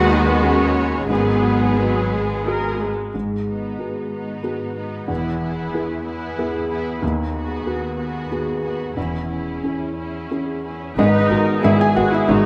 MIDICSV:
0, 0, Header, 1, 10, 480
1, 0, Start_track
1, 0, Key_signature, 5, "minor"
1, 0, Tempo, 674916
1, 779, Time_signature, 3, 2, 24, 8
1, 2231, Tempo, 645856
1, 6071, Tempo, 662983
1, 9078, End_track
2, 0, Start_track
2, 0, Title_t, "Violin section"
2, 0, Program_c, 0, 48
2, 70, Note_on_c, 0, 75, 84
2, 186, Note_off_c, 0, 75, 0
2, 187, Note_on_c, 0, 71, 69
2, 303, Note_off_c, 0, 71, 0
2, 304, Note_on_c, 0, 73, 85
2, 774, Note_on_c, 0, 71, 76
2, 780, Note_off_c, 0, 73, 0
2, 1732, Note_off_c, 0, 71, 0
2, 2466, Note_on_c, 0, 66, 31
2, 2941, Note_off_c, 0, 66, 0
2, 2959, Note_on_c, 0, 66, 36
2, 3434, Note_off_c, 0, 66, 0
2, 3444, Note_on_c, 0, 66, 39
2, 3678, Note_on_c, 0, 68, 38
2, 3680, Note_off_c, 0, 66, 0
2, 3911, Note_off_c, 0, 68, 0
2, 3920, Note_on_c, 0, 68, 45
2, 4394, Note_off_c, 0, 68, 0
2, 4410, Note_on_c, 0, 68, 48
2, 4874, Note_off_c, 0, 68, 0
2, 4885, Note_on_c, 0, 68, 53
2, 5115, Note_off_c, 0, 68, 0
2, 5362, Note_on_c, 0, 68, 42
2, 5825, Note_off_c, 0, 68, 0
2, 5834, Note_on_c, 0, 68, 42
2, 6300, Note_off_c, 0, 68, 0
2, 6312, Note_on_c, 0, 68, 32
2, 6538, Note_off_c, 0, 68, 0
2, 6547, Note_on_c, 0, 68, 30
2, 6783, Note_off_c, 0, 68, 0
2, 6803, Note_on_c, 0, 68, 32
2, 7271, Note_off_c, 0, 68, 0
2, 7279, Note_on_c, 0, 68, 33
2, 7753, Note_off_c, 0, 68, 0
2, 7763, Note_on_c, 0, 68, 30
2, 7998, Note_off_c, 0, 68, 0
2, 8009, Note_on_c, 0, 59, 56
2, 8067, Note_off_c, 0, 59, 0
2, 8240, Note_on_c, 0, 59, 58
2, 8298, Note_off_c, 0, 59, 0
2, 8483, Note_on_c, 0, 59, 57
2, 8541, Note_off_c, 0, 59, 0
2, 8714, Note_on_c, 0, 59, 61
2, 8772, Note_off_c, 0, 59, 0
2, 8957, Note_on_c, 0, 59, 57
2, 9015, Note_off_c, 0, 59, 0
2, 9078, End_track
3, 0, Start_track
3, 0, Title_t, "Felt piano"
3, 0, Program_c, 1, 0
3, 0, Control_c, 1, 64, 127
3, 0, Note_on_c, 1, 39, 69
3, 0, Note_on_c, 1, 59, 51
3, 304, Note_on_c, 1, 66, 39
3, 312, Note_on_c, 1, 68, 45
3, 583, Note_off_c, 1, 59, 0
3, 751, Note_off_c, 1, 66, 0
3, 752, Note_off_c, 1, 39, 0
3, 755, Note_off_c, 1, 68, 0
3, 773, Note_on_c, 1, 44, 57
3, 793, Control_c, 1, 64, 0
3, 906, Control_c, 1, 64, 127
3, 1271, Note_on_c, 1, 59, 49
3, 1758, Note_on_c, 1, 66, 39
3, 1763, Note_on_c, 1, 68, 40
3, 2043, Note_off_c, 1, 59, 0
3, 2200, Note_off_c, 1, 44, 0
3, 2206, Note_off_c, 1, 66, 0
3, 2208, Note_off_c, 1, 68, 0
3, 2233, Note_on_c, 1, 44, 31
3, 2247, Control_c, 1, 64, 0
3, 2383, Control_c, 1, 64, 127
3, 2700, Note_off_c, 1, 44, 0
3, 2715, Note_on_c, 1, 66, 26
3, 2717, Note_on_c, 1, 59, 27
3, 2723, Note_on_c, 1, 68, 28
3, 3169, Note_off_c, 1, 66, 0
3, 3170, Note_off_c, 1, 59, 0
3, 3173, Note_off_c, 1, 68, 0
3, 3194, Note_on_c, 1, 59, 30
3, 3194, Note_on_c, 1, 66, 26
3, 3201, Note_on_c, 1, 68, 32
3, 3652, Note_off_c, 1, 59, 0
3, 3652, Note_off_c, 1, 66, 0
3, 3656, Note_off_c, 1, 68, 0
3, 3672, Note_on_c, 1, 40, 46
3, 3698, Control_c, 1, 64, 0
3, 3809, Control_c, 1, 64, 127
3, 4146, Note_off_c, 1, 40, 0
3, 4163, Note_on_c, 1, 59, 35
3, 4166, Note_on_c, 1, 64, 38
3, 4171, Note_on_c, 1, 68, 43
3, 4613, Note_off_c, 1, 59, 0
3, 4614, Note_off_c, 1, 64, 0
3, 4617, Note_off_c, 1, 68, 0
3, 4646, Note_on_c, 1, 59, 41
3, 4646, Note_on_c, 1, 68, 46
3, 4650, Note_on_c, 1, 64, 37
3, 5089, Note_off_c, 1, 59, 0
3, 5089, Note_off_c, 1, 68, 0
3, 5091, Note_off_c, 1, 64, 0
3, 5116, Note_on_c, 1, 39, 51
3, 5131, Control_c, 1, 64, 0
3, 5257, Control_c, 1, 64, 127
3, 5579, Note_off_c, 1, 39, 0
3, 5593, Note_on_c, 1, 66, 32
3, 5596, Note_on_c, 1, 59, 38
3, 5599, Note_on_c, 1, 68, 41
3, 6043, Note_off_c, 1, 66, 0
3, 6045, Note_off_c, 1, 59, 0
3, 6046, Note_off_c, 1, 68, 0
3, 6079, Note_on_c, 1, 59, 34
3, 6079, Note_on_c, 1, 66, 33
3, 6085, Note_on_c, 1, 68, 35
3, 6521, Note_off_c, 1, 66, 0
3, 6522, Note_off_c, 1, 59, 0
3, 6525, Note_off_c, 1, 68, 0
3, 6551, Note_on_c, 1, 40, 38
3, 6563, Control_c, 1, 64, 0
3, 6665, Control_c, 1, 64, 127
3, 7019, Note_off_c, 1, 40, 0
3, 7034, Note_on_c, 1, 61, 27
3, 7040, Note_on_c, 1, 64, 24
3, 7044, Note_on_c, 1, 68, 29
3, 7490, Note_off_c, 1, 61, 0
3, 7493, Note_off_c, 1, 64, 0
3, 7495, Note_off_c, 1, 68, 0
3, 7525, Note_on_c, 1, 61, 26
3, 7525, Note_on_c, 1, 68, 26
3, 7528, Note_on_c, 1, 64, 24
3, 7976, Note_off_c, 1, 61, 0
3, 7976, Note_off_c, 1, 68, 0
3, 7978, Note_off_c, 1, 64, 0
3, 8009, Note_on_c, 1, 32, 58
3, 8013, Note_on_c, 1, 44, 65
3, 8013, Note_on_c, 1, 75, 84
3, 8017, Control_c, 1, 64, 0
3, 8147, Control_c, 1, 64, 127
3, 8236, Note_off_c, 1, 32, 0
3, 8238, Note_off_c, 1, 44, 0
3, 8246, Note_on_c, 1, 66, 44
3, 8247, Note_on_c, 1, 59, 47
3, 8251, Note_on_c, 1, 68, 50
3, 8454, Note_off_c, 1, 75, 0
3, 8457, Note_off_c, 1, 66, 0
3, 8458, Note_off_c, 1, 59, 0
3, 8460, Note_off_c, 1, 68, 0
3, 8484, Note_on_c, 1, 32, 62
3, 8488, Note_on_c, 1, 44, 55
3, 8489, Note_on_c, 1, 76, 95
3, 8594, Note_off_c, 1, 76, 0
3, 8609, Note_on_c, 1, 80, 89
3, 8712, Note_off_c, 1, 32, 0
3, 8714, Note_off_c, 1, 44, 0
3, 8714, Note_off_c, 1, 80, 0
3, 8715, Note_on_c, 1, 59, 48
3, 8720, Note_on_c, 1, 66, 52
3, 8722, Note_on_c, 1, 78, 76
3, 8723, Note_on_c, 1, 68, 54
3, 8830, Note_off_c, 1, 78, 0
3, 8849, Note_on_c, 1, 76, 80
3, 8930, Note_off_c, 1, 59, 0
3, 8933, Note_off_c, 1, 66, 0
3, 8935, Note_off_c, 1, 68, 0
3, 8949, Note_on_c, 1, 32, 58
3, 8954, Note_off_c, 1, 76, 0
3, 8954, Note_on_c, 1, 75, 75
3, 8955, Note_on_c, 1, 44, 55
3, 9078, Note_off_c, 1, 32, 0
3, 9078, Note_off_c, 1, 44, 0
3, 9078, Note_off_c, 1, 75, 0
3, 9078, End_track
4, 0, Start_track
4, 0, Title_t, "Clarinet"
4, 0, Program_c, 2, 71
4, 0, Note_on_c, 2, 66, 77
4, 71, Note_on_c, 2, 63, 72
4, 81, Note_off_c, 2, 66, 0
4, 185, Note_on_c, 2, 59, 66
4, 196, Note_off_c, 2, 63, 0
4, 299, Note_on_c, 2, 61, 69
4, 310, Note_off_c, 2, 59, 0
4, 608, Note_off_c, 2, 61, 0
4, 782, Note_on_c, 2, 59, 57
4, 1727, Note_off_c, 2, 59, 0
4, 9078, End_track
5, 0, Start_track
5, 0, Title_t, "Violin section"
5, 0, Program_c, 3, 48
5, 0, Note_on_c, 3, 56, 78
5, 0, Note_on_c, 3, 59, 77
5, 748, Note_off_c, 3, 56, 0
5, 751, Note_off_c, 3, 59, 0
5, 786, Note_on_c, 3, 59, 68
5, 788, Note_on_c, 3, 56, 61
5, 2065, Note_off_c, 3, 59, 0
5, 2066, Note_off_c, 3, 56, 0
5, 2476, Note_on_c, 3, 63, 26
5, 2943, Note_off_c, 3, 63, 0
5, 2952, Note_on_c, 3, 63, 35
5, 3430, Note_off_c, 3, 63, 0
5, 3444, Note_on_c, 3, 63, 34
5, 3680, Note_off_c, 3, 63, 0
5, 3683, Note_on_c, 3, 64, 45
5, 3915, Note_off_c, 3, 64, 0
5, 3924, Note_on_c, 3, 64, 44
5, 4385, Note_off_c, 3, 64, 0
5, 4394, Note_on_c, 3, 64, 50
5, 4865, Note_off_c, 3, 64, 0
5, 4886, Note_on_c, 3, 64, 48
5, 5116, Note_off_c, 3, 64, 0
5, 5356, Note_on_c, 3, 66, 42
5, 5824, Note_off_c, 3, 66, 0
5, 5833, Note_on_c, 3, 66, 44
5, 6299, Note_off_c, 3, 66, 0
5, 6310, Note_on_c, 3, 66, 36
5, 6535, Note_on_c, 3, 64, 34
5, 6543, Note_off_c, 3, 66, 0
5, 6775, Note_off_c, 3, 64, 0
5, 6784, Note_on_c, 3, 64, 26
5, 7263, Note_off_c, 3, 64, 0
5, 7280, Note_on_c, 3, 64, 30
5, 7753, Note_off_c, 3, 64, 0
5, 7761, Note_on_c, 3, 64, 30
5, 7997, Note_off_c, 3, 64, 0
5, 8015, Note_on_c, 3, 56, 72
5, 8015, Note_on_c, 3, 59, 72
5, 8073, Note_off_c, 3, 56, 0
5, 8073, Note_off_c, 3, 59, 0
5, 8245, Note_on_c, 3, 59, 51
5, 8253, Note_on_c, 3, 56, 51
5, 8303, Note_off_c, 3, 59, 0
5, 8311, Note_off_c, 3, 56, 0
5, 8480, Note_on_c, 3, 56, 58
5, 8482, Note_on_c, 3, 59, 58
5, 8538, Note_off_c, 3, 56, 0
5, 8540, Note_off_c, 3, 59, 0
5, 8719, Note_on_c, 3, 56, 51
5, 8721, Note_on_c, 3, 59, 53
5, 8777, Note_off_c, 3, 56, 0
5, 8779, Note_off_c, 3, 59, 0
5, 8955, Note_on_c, 3, 59, 60
5, 8957, Note_on_c, 3, 56, 58
5, 9013, Note_off_c, 3, 59, 0
5, 9015, Note_off_c, 3, 56, 0
5, 9078, End_track
6, 0, Start_track
6, 0, Title_t, "French horn section"
6, 0, Program_c, 4, 60
6, 82, Note_on_c, 4, 63, 69
6, 192, Note_off_c, 4, 63, 0
6, 197, Note_on_c, 4, 59, 63
6, 308, Note_off_c, 4, 59, 0
6, 314, Note_on_c, 4, 61, 66
6, 785, Note_off_c, 4, 61, 0
6, 790, Note_on_c, 4, 59, 63
6, 1759, Note_off_c, 4, 59, 0
6, 9078, End_track
7, 0, Start_track
7, 0, Title_t, "Harp"
7, 0, Program_c, 5, 46
7, 0, Note_on_c, 5, 51, 63
7, 0, Note_on_c, 5, 56, 61
7, 0, Note_on_c, 5, 68, 52
7, 0, Note_on_c, 5, 71, 62
7, 65, Note_on_c, 5, 59, 47
7, 295, Note_off_c, 5, 71, 0
7, 304, Note_on_c, 5, 71, 53
7, 524, Note_off_c, 5, 68, 0
7, 533, Note_on_c, 5, 68, 46
7, 566, Note_off_c, 5, 56, 0
7, 776, Note_on_c, 5, 44, 60
7, 794, Note_off_c, 5, 51, 0
7, 1256, Note_off_c, 5, 59, 0
7, 1265, Note_on_c, 5, 59, 48
7, 1496, Note_off_c, 5, 68, 0
7, 1505, Note_on_c, 5, 68, 40
7, 1752, Note_on_c, 5, 66, 49
7, 1980, Note_off_c, 5, 59, 0
7, 1988, Note_on_c, 5, 59, 45
7, 2214, Note_off_c, 5, 44, 0
7, 2222, Note_on_c, 5, 44, 35
7, 2468, Note_on_c, 5, 51, 25
7, 2710, Note_on_c, 5, 56, 28
7, 2940, Note_off_c, 5, 59, 0
7, 2949, Note_on_c, 5, 59, 28
7, 3115, Note_off_c, 5, 71, 0
7, 3188, Note_off_c, 5, 66, 0
7, 3197, Note_on_c, 5, 66, 37
7, 3428, Note_off_c, 5, 59, 0
7, 3437, Note_on_c, 5, 59, 37
7, 3682, Note_on_c, 5, 52, 51
7, 3698, Note_off_c, 5, 44, 0
7, 3700, Note_off_c, 5, 51, 0
7, 3703, Note_off_c, 5, 66, 0
7, 3913, Note_off_c, 5, 56, 0
7, 3922, Note_on_c, 5, 56, 38
7, 4149, Note_off_c, 5, 59, 0
7, 4158, Note_on_c, 5, 59, 41
7, 4370, Note_off_c, 5, 68, 0
7, 4395, Note_on_c, 5, 64, 37
7, 4641, Note_on_c, 5, 68, 49
7, 4873, Note_off_c, 5, 64, 0
7, 4882, Note_on_c, 5, 64, 42
7, 5122, Note_on_c, 5, 51, 51
7, 5136, Note_off_c, 5, 52, 0
7, 5137, Note_off_c, 5, 64, 0
7, 5354, Note_off_c, 5, 56, 0
7, 5362, Note_on_c, 5, 56, 39
7, 5592, Note_off_c, 5, 59, 0
7, 5601, Note_on_c, 5, 59, 39
7, 5843, Note_on_c, 5, 66, 37
7, 6069, Note_off_c, 5, 68, 0
7, 6078, Note_on_c, 5, 68, 37
7, 6308, Note_off_c, 5, 66, 0
7, 6317, Note_on_c, 5, 66, 32
7, 6548, Note_on_c, 5, 52, 35
7, 6569, Note_off_c, 5, 51, 0
7, 6570, Note_off_c, 5, 59, 0
7, 6571, Note_off_c, 5, 66, 0
7, 6783, Note_off_c, 5, 56, 0
7, 6791, Note_on_c, 5, 56, 24
7, 7030, Note_on_c, 5, 61, 28
7, 7276, Note_on_c, 5, 64, 28
7, 7513, Note_off_c, 5, 68, 0
7, 7522, Note_on_c, 5, 68, 31
7, 7753, Note_off_c, 5, 64, 0
7, 7762, Note_on_c, 5, 64, 26
7, 7999, Note_on_c, 5, 44, 68
7, 8020, Note_off_c, 5, 52, 0
7, 8020, Note_off_c, 5, 61, 0
7, 8021, Note_off_c, 5, 64, 0
7, 8234, Note_off_c, 5, 56, 0
7, 8243, Note_on_c, 5, 56, 52
7, 8482, Note_on_c, 5, 59, 46
7, 8947, Note_off_c, 5, 68, 0
7, 8956, Note_on_c, 5, 68, 56
7, 9078, Note_off_c, 5, 44, 0
7, 9078, Note_off_c, 5, 56, 0
7, 9078, Note_off_c, 5, 59, 0
7, 9078, Note_off_c, 5, 68, 0
7, 9078, End_track
8, 0, Start_track
8, 0, Title_t, "Viola section"
8, 0, Program_c, 6, 48
8, 0, Note_on_c, 6, 51, 63
8, 0, Note_on_c, 6, 56, 74
8, 751, Note_off_c, 6, 56, 0
8, 752, Note_off_c, 6, 51, 0
8, 777, Note_on_c, 6, 51, 49
8, 778, Note_on_c, 6, 54, 58
8, 1210, Note_off_c, 6, 51, 0
8, 1211, Note_off_c, 6, 54, 0
8, 1260, Note_on_c, 6, 54, 65
8, 1491, Note_off_c, 6, 54, 0
8, 1507, Note_on_c, 6, 56, 66
8, 1750, Note_on_c, 6, 70, 65
8, 1751, Note_off_c, 6, 56, 0
8, 1993, Note_off_c, 6, 70, 0
8, 2004, Note_on_c, 6, 56, 63
8, 2237, Note_off_c, 6, 56, 0
8, 2474, Note_on_c, 6, 59, 31
8, 2945, Note_off_c, 6, 59, 0
8, 2958, Note_on_c, 6, 59, 35
8, 3431, Note_off_c, 6, 59, 0
8, 3440, Note_on_c, 6, 59, 40
8, 3675, Note_off_c, 6, 59, 0
8, 3683, Note_on_c, 6, 59, 39
8, 3914, Note_off_c, 6, 59, 0
8, 3923, Note_on_c, 6, 59, 47
8, 4392, Note_off_c, 6, 59, 0
8, 4401, Note_on_c, 6, 59, 51
8, 4869, Note_off_c, 6, 59, 0
8, 4878, Note_on_c, 6, 59, 47
8, 5111, Note_off_c, 6, 59, 0
8, 5346, Note_on_c, 6, 59, 47
8, 5819, Note_off_c, 6, 59, 0
8, 5833, Note_on_c, 6, 59, 45
8, 6293, Note_off_c, 6, 59, 0
8, 6302, Note_on_c, 6, 59, 37
8, 6539, Note_off_c, 6, 59, 0
8, 6539, Note_on_c, 6, 61, 30
8, 6773, Note_off_c, 6, 61, 0
8, 6781, Note_on_c, 6, 61, 32
8, 7262, Note_off_c, 6, 61, 0
8, 7273, Note_on_c, 6, 61, 35
8, 7750, Note_off_c, 6, 61, 0
8, 7762, Note_on_c, 6, 61, 43
8, 7997, Note_off_c, 6, 61, 0
8, 7997, Note_on_c, 6, 63, 80
8, 8446, Note_off_c, 6, 63, 0
8, 8477, Note_on_c, 6, 64, 78
8, 8596, Note_off_c, 6, 64, 0
8, 8596, Note_on_c, 6, 68, 78
8, 8715, Note_off_c, 6, 68, 0
8, 8715, Note_on_c, 6, 66, 82
8, 8831, Note_on_c, 6, 64, 74
8, 8835, Note_off_c, 6, 66, 0
8, 8952, Note_off_c, 6, 64, 0
8, 8958, Note_on_c, 6, 63, 84
8, 9078, Note_off_c, 6, 63, 0
8, 9078, End_track
9, 0, Start_track
9, 0, Title_t, "Cello section"
9, 0, Program_c, 7, 48
9, 0, Note_on_c, 7, 66, 85
9, 775, Note_off_c, 7, 66, 0
9, 783, Note_on_c, 7, 68, 70
9, 1972, Note_off_c, 7, 68, 0
9, 2229, Note_on_c, 7, 44, 45
9, 2656, Note_off_c, 7, 44, 0
9, 2713, Note_on_c, 7, 44, 36
9, 3140, Note_off_c, 7, 44, 0
9, 3199, Note_on_c, 7, 44, 43
9, 3628, Note_off_c, 7, 44, 0
9, 3682, Note_on_c, 7, 40, 61
9, 4109, Note_off_c, 7, 40, 0
9, 4163, Note_on_c, 7, 40, 50
9, 4586, Note_off_c, 7, 40, 0
9, 4638, Note_on_c, 7, 40, 55
9, 5059, Note_off_c, 7, 40, 0
9, 5114, Note_on_c, 7, 39, 62
9, 5536, Note_off_c, 7, 39, 0
9, 5587, Note_on_c, 7, 39, 52
9, 6013, Note_off_c, 7, 39, 0
9, 6075, Note_on_c, 7, 39, 46
9, 6492, Note_off_c, 7, 39, 0
9, 6545, Note_on_c, 7, 40, 44
9, 6973, Note_off_c, 7, 40, 0
9, 7030, Note_on_c, 7, 40, 33
9, 7460, Note_off_c, 7, 40, 0
9, 7514, Note_on_c, 7, 40, 40
9, 7943, Note_off_c, 7, 40, 0
9, 7998, Note_on_c, 7, 71, 76
9, 8221, Note_off_c, 7, 71, 0
9, 8236, Note_on_c, 7, 70, 69
9, 8475, Note_on_c, 7, 68, 64
9, 8476, Note_off_c, 7, 70, 0
9, 8953, Note_off_c, 7, 68, 0
9, 8956, Note_on_c, 7, 66, 67
9, 9078, Note_off_c, 7, 66, 0
9, 9078, End_track
10, 0, Start_track
10, 0, Title_t, "Double bass section"
10, 0, Program_c, 8, 48
10, 0, Note_on_c, 8, 39, 72
10, 750, Note_off_c, 8, 39, 0
10, 780, Note_on_c, 8, 32, 63
10, 2062, Note_off_c, 8, 32, 0
10, 2236, Note_on_c, 8, 32, 39
10, 2638, Note_off_c, 8, 32, 0
10, 3683, Note_on_c, 8, 28, 50
10, 4088, Note_off_c, 8, 28, 0
10, 5123, Note_on_c, 8, 39, 60
10, 5519, Note_off_c, 8, 39, 0
10, 6552, Note_on_c, 8, 28, 44
10, 6956, Note_off_c, 8, 28, 0
10, 8008, Note_on_c, 8, 32, 70
10, 8066, Note_off_c, 8, 32, 0
10, 8244, Note_on_c, 8, 32, 60
10, 8302, Note_off_c, 8, 32, 0
10, 8482, Note_on_c, 8, 32, 56
10, 8540, Note_off_c, 8, 32, 0
10, 8729, Note_on_c, 8, 32, 60
10, 8787, Note_off_c, 8, 32, 0
10, 8966, Note_on_c, 8, 32, 76
10, 9024, Note_off_c, 8, 32, 0
10, 9078, End_track
0, 0, End_of_file